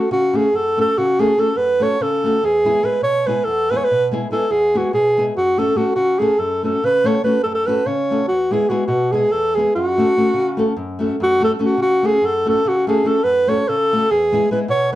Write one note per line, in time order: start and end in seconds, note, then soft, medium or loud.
0.00 0.11 F#4 medium
0.11 0.44 C#3 medium
0.11 0.38 F#4 loud
0.33 0.48 A3 medium
0.33 0.48 C#4 medium
0.33 0.48 F#4 medium
0.33 0.57 G#4 medium
0.33 0.49 A4 medium
0.53 0.87 F#2 medium
0.53 0.79 A4 medium
0.77 0.92 A3 medium
0.77 0.92 C#4 medium
0.77 0.93 F#4 medium
0.77 0.93 A4 medium
0.77 1.00 A4 loud
0.98 1.29 C#3 medium
0.98 1.22 F#4 medium
1.19 1.33 A3 medium
1.19 1.33 C#4 medium
1.19 1.34 F#4 medium
1.19 1.41 G#4 medium
1.19 1.34 A4 medium
1.37 1.51 A3 medium
1.37 1.51 C#4 medium
1.37 1.52 F#4 medium
1.37 1.52 A4 medium
1.37 1.59 A4 medium
1.56 1.90 F#2 medium
1.56 1.84 B4 loud
1.80 1.95 A3 medium
1.80 1.95 C#4 medium
1.80 1.95 F#4 medium
1.80 1.95 A4 medium
1.80 2.04 C#5 loud
2.01 2.34 C#3 medium
2.01 2.47 A4 medium
2.24 2.39 A3 medium
2.24 2.39 C#4 medium
2.24 2.39 F#4 medium
2.24 2.40 A4 medium
2.43 2.75 E2 medium
2.43 2.87 G#4 loud
2.64 2.79 G#3 medium
2.64 2.79 B3 medium
2.64 2.80 E4 medium
2.64 2.80 G#4 medium
2.83 2.97 G#3 medium
2.83 2.98 B3 medium
2.83 2.98 E4 medium
2.83 2.98 G#4 medium
2.83 3.03 B4 medium
3.02 3.36 B2 medium
3.02 3.28 C#5 loud
3.27 3.41 G#3 medium
3.27 3.42 B3 medium
3.27 3.42 E4 medium
3.27 3.42 G#4 medium
3.27 3.46 B4 medium
3.45 3.81 E2 medium
3.45 3.72 A4 loud
3.71 3.85 G#3 medium
3.71 3.86 B3 medium
3.71 3.86 E4 medium
3.71 3.86 G#4 medium
3.71 3.78 B4 loud
3.77 3.86 C#5 medium
3.84 4.06 B4 loud
3.91 4.22 B2 medium
4.11 4.26 G#3 medium
4.11 4.26 B3 medium
4.11 4.27 E4 medium
4.11 4.27 G#4 medium
4.31 4.45 G#3 medium
4.31 4.45 B3 medium
4.31 4.45 E4 medium
4.31 4.46 G#4 medium
4.31 4.53 A4 medium
4.51 4.84 E2 medium
4.51 4.79 G#4 loud
4.74 4.88 G#3 medium
4.74 4.88 B3 medium
4.74 4.89 E4 medium
4.74 4.93 F#4 medium
4.74 4.89 G#4 medium
4.93 5.27 B2 medium
4.93 5.25 G#4 loud
5.17 5.32 G#3 medium
5.17 5.32 B3 soft
5.17 5.32 E4 medium
5.17 5.33 G#4 medium
5.37 5.68 F#2 medium
5.37 5.60 F#4 loud
5.57 5.72 A3 medium
5.57 5.72 C#4 medium
5.57 5.73 F#4 medium
5.57 5.79 A4 medium
5.57 5.73 A4 medium
5.75 5.90 A3 medium
5.75 5.91 C#4 medium
5.75 5.95 F#4 medium
5.75 5.91 F#4 medium
5.75 5.91 A4 medium
5.95 6.29 C#3 medium
5.95 6.21 F#4 loud
6.19 6.34 A3 medium
6.19 6.34 C#4 medium
6.19 6.35 F#4 medium
6.19 6.41 G#4 medium
6.19 6.35 A4 medium
6.39 6.73 F#2 medium
6.39 6.64 A4 loud
6.63 6.78 A3 medium
6.63 6.78 C#4 medium
6.63 6.79 F#4 medium
6.63 6.86 A4 medium
6.63 6.79 A4 medium
6.83 7.14 C#3 medium
6.83 7.08 B4 loud
7.04 7.18 A3 medium
7.04 7.19 C#4 medium
7.04 7.19 F#4 medium
7.04 7.19 A4 medium
7.04 7.24 C#5 loud
7.24 7.37 A3 medium
7.24 7.38 C#4 medium
7.24 7.38 F#4 medium
7.24 7.38 A4 medium
7.24 7.41 B4 medium
7.43 7.76 F#2 medium
7.43 7.46 A4 loud
7.43 7.54 A4 medium
7.55 7.68 A4 loud
7.67 7.81 A3 medium
7.67 7.81 C#4 medium
7.67 7.81 F#4 medium
7.67 7.82 A4 medium
7.67 7.88 B4 medium
7.86 8.20 C#3 medium
7.86 8.27 C#5 medium
8.11 8.25 A3 medium
8.11 8.25 C#4 medium
8.11 8.25 F#4 medium
8.11 8.25 A4 medium
8.28 8.61 E2 medium
8.28 8.54 F#4 medium
8.51 8.65 G#3 medium
8.51 8.65 B3 medium
8.51 8.65 E4 medium
8.51 8.71 G#4 medium
8.51 8.66 G#4 medium
8.69 8.83 G#3 medium
8.69 8.84 B3 medium
8.69 8.84 E4 medium
8.69 8.86 F#4 medium
8.69 8.84 G#4 medium
8.86 9.21 B2 medium
8.86 9.13 F#4 medium
9.12 9.27 G#3 medium
9.12 9.27 B3 medium
9.12 9.27 E4 medium
9.12 9.33 G#4 medium
9.12 9.28 G#4 medium
9.32 9.66 E2 medium
9.32 9.57 A4 loud
9.55 9.71 G#3 medium
9.55 9.71 B3 medium
9.55 9.72 E4 medium
9.55 9.74 G#4 medium
9.55 9.72 G#4 medium
9.75 10.06 F#2 medium
9.75 10.73 F#4 loud
9.97 10.11 A3 medium
9.97 10.12 C#4 medium
9.97 10.12 F#4 medium
9.97 10.12 A4 medium
10.17 10.30 A3 medium
10.17 10.30 C#4 medium
10.17 10.30 F#4 medium
10.17 10.30 A4 medium
10.34 10.67 C#3 medium
10.57 10.72 A3 medium
10.57 10.72 C#4 medium
10.57 10.72 F#4 medium
10.57 10.73 A4 medium
10.76 11.10 F#2 medium
10.99 11.14 A3 medium
10.99 11.15 C#4 medium
10.99 11.15 F#4 medium
10.99 11.15 A4 medium
11.20 11.51 F#2 medium
11.20 11.42 F#4 loud
11.40 11.55 A3 medium
11.40 11.56 C#4 medium
11.40 11.55 F#4 medium
11.40 11.56 A4 medium
11.40 11.52 A4 medium
11.59 11.73 A3 medium
11.59 11.74 C#4 medium
11.59 11.74 F#4 medium
11.59 11.74 A4 medium
11.63 11.79 F#4 medium
11.77 12.11 C#3 medium
11.82 12.08 F#4 loud
12.03 12.17 A3 medium
12.03 12.18 C#4 medium
12.03 12.18 F#4 medium
12.03 12.27 G#4 medium
12.03 12.18 A4 medium
12.22 12.55 F#2 medium
12.22 12.48 A4 loud
12.45 12.60 A3 medium
12.45 12.60 C#4 medium
12.45 12.61 F#4 medium
12.45 12.61 A4 medium
12.49 12.70 A4 medium
12.65 12.96 C#3 medium
12.65 12.88 F#4 loud
12.87 13.01 A3 medium
12.87 13.02 C#4 medium
12.87 13.02 F#4 medium
12.87 13.09 G#4 medium
12.87 13.02 A4 medium
13.04 13.18 A3 medium
13.04 13.19 C#4 medium
13.04 13.19 F#4 medium
13.04 13.20 A4 medium
13.04 13.25 A4 medium
13.24 13.57 F#2 medium
13.24 13.50 B4 loud
13.47 13.62 A3 medium
13.47 13.62 C#4 medium
13.47 13.62 F#4 medium
13.47 13.63 A4 medium
13.47 13.70 C#5 medium
13.68 14.01 C#3 medium
13.68 14.12 A4 loud
13.93 14.06 A3 medium
13.93 14.06 C#4 medium
13.93 14.06 F#4 medium
13.93 14.07 A4 medium
14.11 14.41 E2 medium
14.11 14.51 G#4 loud
14.32 14.46 G#3 medium
14.32 14.46 B3 medium
14.32 14.46 E4 medium
14.32 14.47 G#4 medium
14.51 14.64 G#3 medium
14.51 14.65 B3 medium
14.51 14.65 E4 medium
14.51 14.65 G#4 medium
14.51 14.60 B4 medium
14.68 14.95 B2 medium
14.68 14.92 C#5 loud